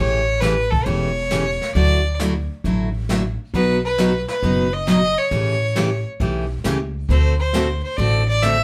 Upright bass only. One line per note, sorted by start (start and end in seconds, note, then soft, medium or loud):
0.00 0.69 A1 medium
0.86 1.57 E1 medium
1.75 2.46 D2 medium
2.64 3.36 A1 medium
3.54 4.25 B1 medium
4.43 5.14 F#1 medium
5.31 6.02 A1 medium
6.20 6.58 B1 medium
6.65 7.03 C#2 medium
7.09 7.80 D2 medium
7.98 8.64 A1 medium